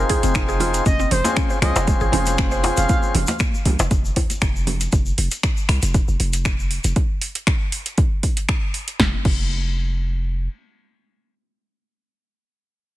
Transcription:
Already playing: C4 D#4 F4 G#4 C5
0.09 G#4, kick, open hi-hat, djembe tone
0.23 F1 C4, closed hi-hat, muted conga, shaker
0.35 D#4, finger snap, kick, closed hi-hat, shaker
0.49 G#4, shaker
0.60 F4, open hi-hat, muted conga, low conga
0.74 closed hi-hat, shaker
0.86 F1 C#4 D#5, kick, closed hi-hat, high conga, djembe tone, shaker
0.99 C4, shaker
1.11 F1 C5, open hi-hat, muted conga, low conga
1.24 C4 C#4 F4 G#4 C5, closed hi-hat, djembe slap, high conga, shaker
1.37 C#4, finger snap, kick, closed hi-hat, high conga, shaker
1.50 C5, muted conga, shaker
1.62 C2 C4 C#4 F4 G#4 C5 D#5, finger snap, open hi-hat, high conga, low conga
1.76 F1, closed hi-hat, djembe slap, shaker
1.87 G#3, kick, closed hi-hat, muted conga, shaker
2.01 G#1 G#4, shaker
2.12 F1 C#4, open hi-hat, djembe tone, high conga, low conga
2.26 closed hi-hat, muted conga, shaker
2.38 C#4, finger snap, kick, closed hi-hat, high conga, shaker
2.51 C5, shaker
2.63 F4, open hi-hat, muted conga, djembe slap
2.77 F1 F5, closed hi-hat, shaker
2.89 F5, kick, closed hi-hat, high conga, djembe tone, low conga, shaker
3.03 shaker
3.15 F1, open hi-hat, muted conga, low conga
3.27 closed hi-hat, djembe slap, high conga, shaker
3.39 finger snap, kick, closed hi-hat, high conga, shaker
3.54 muted conga, shaker
3.65 C2, open hi-hat, high conga, low conga
3.79 F1, closed hi-hat, djembe slap, shaker
3.91 F1, kick, closed hi-hat, muted conga, djembe tone, shaker
4.05 shaker
4.16 kick, open hi-hat, djembe tone
4.30 closed hi-hat, muted conga, shaker
4.41 F1, finger snap, kick, closed hi-hat, shaker
4.56 shaker
4.67 open hi-hat, muted conga, low conga
4.80 closed hi-hat, shaker
4.92 F1, kick, closed hi-hat, shaker
5.06 shaker
5.18 F1, open hi-hat
5.31 closed hi-hat, shaker
5.43 finger snap, kick, closed hi-hat, shaker
5.57 shaker
5.69 C2, finger snap, open hi-hat
5.82 F1, closed hi-hat, shaker
5.94 kick, closed hi-hat, shaker
6.08 F1, shaker
6.20 F1, open hi-hat
6.33 closed hi-hat, shaker
6.45 finger snap, kick, closed hi-hat, shaker
6.59 shaker
6.71 open hi-hat
6.84 F1, closed hi-hat, shaker
6.96 kick, closed hi-hat
7.22 open hi-hat
7.35 closed hi-hat
7.47 finger snap, kick, closed hi-hat
7.72 open hi-hat
7.86 closed hi-hat
7.98 kick, closed hi-hat
8.23 kick, open hi-hat
8.37 closed hi-hat
8.49 finger snap, kick, closed hi-hat
8.74 open hi-hat
8.88 closed hi-hat
9.00 F1, kick, snare
9.25 F1, kick, crash

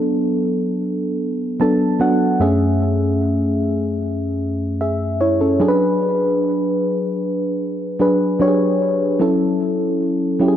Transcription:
Already playing: F#3 B3 D4 A4
1.60 F#3 B3 D4 A4 A5
2.00 F#3 B3 D4 F#4 F#5
2.40 F#2 A3 C#4 G#4 E5
4.81 G#4 E5
5.21 E4 C#5
5.41 C#4 A4
5.60 F#3 D4 G#4 A4
5.68 B4
7.99 F#3 D4 G#4 B4
8.40 F#3 D4 G4 C#5
8.48 G#4
9.19 F#3 C#4 E4 A4
10.40 F#3 C#4 E4 G4
10.48 G#4

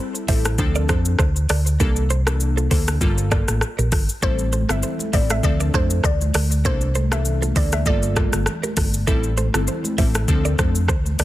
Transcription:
Already playing: G3 C4 E4 A4
0.15 shaker
0.28 A1 G3 C4 E4 A4 C5 E5, kick, open hi-hat, shaker
0.45 cross-stick, shaker
0.58 D2 F3 C4 D4 A4, kick, shaker
0.75 A#4 D5, shaker
0.89 F2 F3 C4 D4 A4 C5, kick, cross-stick, shaker
1.05 shaker
1.19 D2 A4 C5, kick, cross-stick, shaker
1.36 shaker
1.49 D2 A#4 D5, cross-stick, open hi-hat, shaker
1.67 shaker
1.80 C2 E3 A#3 D4 G4 A4 A#4, kick, shaker
1.96 shaker
2.10 A4 C5, shaker
2.27 E3 A#3 D4 G4 A4 A#4, cross-stick, shaker
2.40 shaker
2.57 F4 A4, shaker
2.70 D2 E3 A#3 D4 A4 C5, kick, open hi-hat, shaker
2.88 cross-stick, shaker
3.01 G1 G3 A#3 F4 A4, kick, shaker
3.18 shaker
3.31 G3 A#3 F4 A4 A#4 D5, kick, cross-stick, shaker
3.48 A1, cross-stick, shaker
3.61 cross-stick, shaker
3.78 A#1 G4 A#4, shaker
3.92 G1 F4 A4, kick, cross-stick, open hi-hat, shaker
4.09 shaker
4.22 A1 G3 C4 E4 A4 C5, kick, shaker
4.39 shaker
4.53 A4 C5, high conga, shaker
4.69 G1 G3 C4 E4 F4 A4 E5, cross-stick, shaker
4.83 A4 C5, low conga, shaker
4.99 high conga, shaker
5.13 A1 G3 C4 E4 A4 C5 D5 E5, kick, open hi-hat, low conga, shaker
5.30 E5, cross-stick, high conga, shaker
5.43 D2 F3 C4 D4 A4 D5, kick, shaker
5.60 A#4 D5, shaker
5.74 F2 F3 C4 D4 A4 C5, kick, cross-stick, high conga, shaker
5.90 shaker
6.04 D2 A4 C5 D5, kick, cross-stick, low conga, shaker
6.21 high conga, shaker
6.34 D2 A#4 D5, cross-stick, open hi-hat, high conga, shaker
6.52 shaker
6.65 C2 E3 A#3 D4 G4 A4 A#4 C5, kick, shaker
6.81 shaker
6.95 A4 C5, high conga, shaker
7.12 E3 A#3 D4 G4 A4 A#4 E5, cross-stick, shaker
7.25 low conga, shaker
7.42 F4 A4, high conga, shaker
7.55 D2 E3 A#3 D4 A4 C5 D5, kick, open hi-hat, low conga, shaker
7.72 E5, cross-stick, high conga, shaker
7.86 G1 G3 A#3 F4 A4 D5, kick, shaker
8.03 shaker
8.16 G3 A#3 F4 A4 A#4 D5, kick, cross-stick, high conga, shaker
8.33 G1, cross-stick, shaker
8.46 cross-stick, low conga, shaker
8.63 G4 A#4, high conga, shaker
8.77 G1 F4 A4, kick, cross-stick, open hi-hat, high conga, shaker
8.94 shaker
9.07 A1 G3 C4 E4 A4, kick, shaker
9.23 shaker
9.37 A4 C5, high conga, shaker
9.54 G1 G3 C4 E4 F4 A4, cross-stick, shaker
9.67 A4 C5, low conga, shaker
9.84 high conga, shaker
9.98 A1 G3 C4 E4 A4 C5 E5, kick, open hi-hat, low conga, shaker
10.15 cross-stick, high conga, shaker
10.28 D2 F3 C4 D4 A4, kick, shaker
10.45 A#4 D5, shaker
10.58 F2 F3 C4 D4 A4 C5, kick, cross-stick, high conga, shaker
10.75 shaker
10.88 D2 A4 C5, kick, cross-stick, low conga, shaker
11.06 high conga, shaker
11.19 D2 A#4 D5, cross-stick, open hi-hat, high conga, shaker

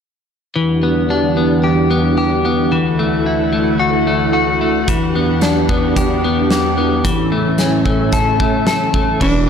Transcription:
0.54 E2 E3 D4 G4 F#5
0.83 B3
1.10 D4
1.37 B3
1.64 G4
1.91 B3
2.18 G4
2.45 B3
2.72 D2 D3 E3 E4 A4
2.99 A3
3.26 E4
3.53 A3
3.80 F#4
4.07 A3
4.33 F#4
4.61 A3
4.87 E2 E3 D4 G4, kick, closed hi-hat
5.15 B3
5.41 D4, snare, closed hi-hat
5.69 B3, kick
5.96 G4, kick, closed hi-hat
6.24 B3
6.51 G4, snare, closed hi-hat
6.78 B3
7.05 A2 E3 C#4 A4 E5, kick, closed hi-hat
7.32 A3
7.58 C#4, snare, closed hi-hat
7.86 A3, kick
8.12 A4, kick, closed hi-hat
8.40 A3, kick
8.67 A4, snare, closed hi-hat
8.94 A3, kick
9.21 E1 E3 D4 G4 E5 B5 D6, kick, crash

